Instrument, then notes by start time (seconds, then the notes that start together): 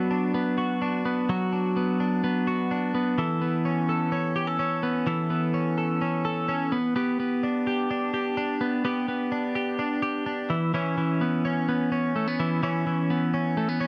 clean electric guitar
Already playing: F#3 B3 F#4
0.11 D4
0.34 B3
0.58 F#4
0.82 D4
1.05 B3
1.29 F#3 F#4
1.53 D4
1.77 B3
2.00 D4
2.24 B3
2.47 F#4
2.71 D4
2.95 B3
3.18 E3 A4
3.41 B3
3.65 C#4
3.89 A4
4.12 C#4
4.36 G4
4.47 A4
4.59 C#4
4.83 B3
5.07 E3 A4
5.30 B3
5.54 C#4
5.78 A4
6.01 C#4
6.25 A4
6.49 C#4
6.72 B3
6.96 B3 G4
7.20 B3
7.43 D4
7.67 G4
7.91 D4
8.14 G4
8.37 D4
8.61 B3
8.85 B3 G4
9.08 B3
9.32 D4
9.55 G4
9.79 D4
10.02 G4
10.26 D4
10.50 E3
10.74 E3 C#4
10.98 E3
11.21 B3
11.45 C#4
11.69 B3
11.92 C#4
12.16 A3
12.28 B3
12.40 E3
12.63 E3 C#4
12.87 E3
13.10 B3
13.34 C#4
13.57 A3
13.69 B3
13.80 C#4